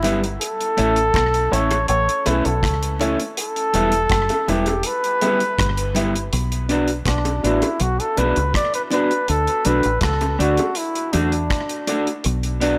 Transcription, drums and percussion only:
0.03 closed hi-hat, low bongo
0.24 closed hi-hat
0.41 closed hi-hat
0.61 closed hi-hat
0.78 closed hi-hat
0.96 closed hi-hat
1.14 kick, cross-stick, closed hi-hat
1.34 closed hi-hat
1.53 closed hi-hat
1.71 closed hi-hat, high bongo
1.88 closed hi-hat
2.09 closed hi-hat
2.26 closed hi-hat, high bongo
2.45 closed hi-hat
2.63 kick, cross-stick, closed hi-hat
2.83 closed hi-hat
2.99 closed hi-hat, low bongo
3.20 closed hi-hat
3.37 closed hi-hat
3.56 closed hi-hat
3.74 closed hi-hat
3.92 closed hi-hat
4.10 kick, cross-stick, closed hi-hat
4.29 closed hi-hat, high bongo
4.48 closed hi-hat, high bongo, low bongo
4.66 closed hi-hat, high bongo
4.83 closed hi-hat
5.04 closed hi-hat
5.21 closed hi-hat, high bongo
5.40 closed hi-hat
5.59 kick, cross-stick, closed hi-hat
5.77 closed hi-hat
5.95 closed hi-hat, low bongo
6.15 closed hi-hat
6.33 closed hi-hat
6.52 closed hi-hat
6.69 closed hi-hat
6.88 closed hi-hat
7.05 kick, cross-stick, closed hi-hat
7.25 closed hi-hat, high bongo
7.44 closed hi-hat
7.62 closed hi-hat, high bongo
7.80 closed hi-hat
8.00 closed hi-hat
8.17 closed hi-hat, high bongo
8.36 closed hi-hat
8.54 kick, cross-stick, closed hi-hat
8.74 closed hi-hat
8.90 closed hi-hat, low bongo
9.11 closed hi-hat
9.28 closed hi-hat
9.47 closed hi-hat
9.65 closed hi-hat
9.83 closed hi-hat
10.01 kick, cross-stick, closed hi-hat
10.21 closed hi-hat, high bongo
10.40 closed hi-hat
10.57 closed hi-hat, high bongo
10.75 closed hi-hat
10.95 closed hi-hat
11.13 closed hi-hat, high bongo
11.32 closed hi-hat
11.50 kick, cross-stick, closed hi-hat
11.69 closed hi-hat
11.87 closed hi-hat, low bongo
12.07 closed hi-hat
12.24 closed hi-hat
12.43 closed hi-hat
12.61 closed hi-hat

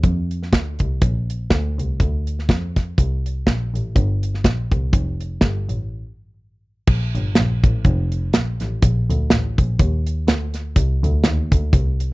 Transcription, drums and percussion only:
0.03 kick, closed hi-hat
0.31 closed hi-hat
0.43 snare
0.53 kick, snare, closed hi-hat
0.79 kick, closed hi-hat
1.02 kick, closed hi-hat
1.30 closed hi-hat
1.50 kick, snare, closed hi-hat
1.79 closed hi-hat
2.00 kick, closed hi-hat
2.27 closed hi-hat
2.39 snare
2.49 kick, snare, closed hi-hat
2.76 kick, snare, closed hi-hat
2.98 kick, closed hi-hat
3.26 closed hi-hat
3.47 kick, snare, closed hi-hat
3.75 closed hi-hat
3.96 kick, closed hi-hat
4.23 closed hi-hat
4.34 snare
4.44 kick, snare, closed hi-hat
4.71 kick, closed hi-hat
4.93 kick, closed hi-hat
5.20 closed hi-hat
5.41 kick, snare, closed hi-hat
5.69 closed hi-hat
6.87 kick, crash
7.15 closed hi-hat
7.35 snare, closed hi-hat
7.64 kick, closed hi-hat
7.84 kick, closed hi-hat
8.12 closed hi-hat
8.33 snare, closed hi-hat
8.60 snare, closed hi-hat
8.82 kick, closed hi-hat
9.10 closed hi-hat
9.30 snare, closed hi-hat
9.58 kick, closed hi-hat
9.79 kick, closed hi-hat
10.07 closed hi-hat
10.28 snare, closed hi-hat
10.54 snare, closed hi-hat
10.76 kick, closed hi-hat
11.04 closed hi-hat
11.24 snare, closed hi-hat
11.52 kick, closed hi-hat
11.73 kick, closed hi-hat
12.00 closed hi-hat

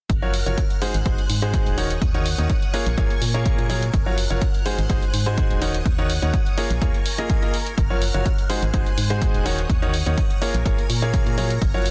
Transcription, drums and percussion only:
0.10 kick, closed hi-hat
0.34 open hi-hat
0.46 closed hi-hat
0.58 kick, closed hi-hat
0.70 closed hi-hat
0.82 open hi-hat
0.94 closed hi-hat
1.06 kick, closed hi-hat
1.18 closed hi-hat
1.30 open hi-hat
1.42 closed hi-hat
1.54 kick, closed hi-hat
1.66 closed hi-hat
1.78 open hi-hat
1.90 closed hi-hat
2.02 kick, closed hi-hat
2.14 closed hi-hat
2.26 open hi-hat
2.38 closed hi-hat
2.50 kick, closed hi-hat
2.62 closed hi-hat
2.74 open hi-hat
2.86 closed hi-hat
2.98 kick, closed hi-hat
3.10 closed hi-hat
3.22 open hi-hat
3.34 closed hi-hat
3.46 kick, closed hi-hat
3.58 closed hi-hat
3.70 open hi-hat
3.82 closed hi-hat
3.94 kick, closed hi-hat
4.18 open hi-hat
4.30 closed hi-hat
4.42 kick, closed hi-hat
4.54 closed hi-hat
4.66 open hi-hat
4.78 closed hi-hat
4.90 kick, closed hi-hat
5.02 closed hi-hat
5.14 open hi-hat
5.26 closed hi-hat
5.38 kick, closed hi-hat
5.50 closed hi-hat
5.62 open hi-hat
5.74 closed hi-hat
5.86 kick, closed hi-hat
5.98 closed hi-hat
6.10 open hi-hat
6.22 closed hi-hat
6.34 kick, closed hi-hat
6.46 closed hi-hat
6.58 open hi-hat
6.70 closed hi-hat
6.82 kick, closed hi-hat
6.94 closed hi-hat
7.06 open hi-hat
7.18 closed hi-hat
7.30 kick, closed hi-hat
7.42 closed hi-hat
7.54 open hi-hat
7.66 closed hi-hat
7.78 kick, closed hi-hat
8.02 open hi-hat
8.14 closed hi-hat
8.26 kick, closed hi-hat
8.38 closed hi-hat
8.50 open hi-hat
8.62 closed hi-hat
8.74 kick, closed hi-hat
8.86 closed hi-hat
8.98 open hi-hat
9.10 closed hi-hat
9.22 kick, closed hi-hat
9.34 closed hi-hat
9.46 open hi-hat
9.58 closed hi-hat
9.70 kick, closed hi-hat
9.82 closed hi-hat
9.94 open hi-hat
10.06 closed hi-hat
10.18 kick, closed hi-hat
10.30 closed hi-hat
10.42 open hi-hat
10.54 closed hi-hat
10.66 kick, closed hi-hat
10.78 closed hi-hat
10.90 open hi-hat
11.02 closed hi-hat
11.14 kick, closed hi-hat
11.27 closed hi-hat
11.38 open hi-hat
11.50 closed hi-hat
11.62 kick, closed hi-hat
11.86 open hi-hat

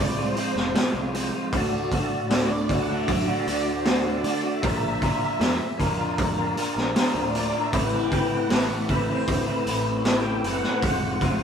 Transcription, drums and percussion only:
0.37 open hi-hat
0.56 snare
0.75 snare, open hi-hat
1.14 open hi-hat
1.53 kick, open hi-hat
1.92 kick, open hi-hat
2.30 snare, open hi-hat
2.69 kick, open hi-hat
3.08 kick, open hi-hat
3.47 open hi-hat
3.85 snare, open hi-hat
4.24 open hi-hat
4.63 kick, open hi-hat
5.02 kick, open hi-hat
5.41 snare, open hi-hat
5.80 kick, open hi-hat
6.18 kick, open hi-hat
6.57 open hi-hat
6.77 snare
6.96 snare, open hi-hat
7.35 open hi-hat
7.73 kick, open hi-hat
8.12 kick, open hi-hat
8.50 snare, open hi-hat
8.89 kick, open hi-hat
9.28 kick, open hi-hat
9.67 open hi-hat
10.05 snare, open hi-hat
10.44 open hi-hat
10.63 snare
10.82 kick, open hi-hat
11.21 kick, open hi-hat

